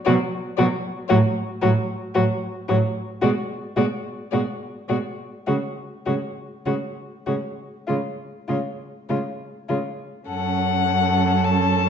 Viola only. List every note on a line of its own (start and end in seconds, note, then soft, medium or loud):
0.07 0.15 F#3 medium
0.59 0.67 F#3 medium
1.11 1.19 F#3 medium
1.62 1.70 F#3 medium
2.16 2.24 F#3 medium
2.70 2.78 F#3 medium
3.23 3.31 G#3 medium
3.77 3.85 G#3 medium
4.32 4.40 G#3 medium
4.88 4.96 G#3 soft
5.47 5.55 G#3 soft
6.07 6.15 G#3 soft
6.67 6.75 G#3 soft
7.28 7.36 G#3 soft
7.89 7.97 G#3 soft
8.49 8.57 G#3 soft
9.09 9.17 G#3 soft
9.69 9.77 G#3 soft
10.29 11.89 C#4 medium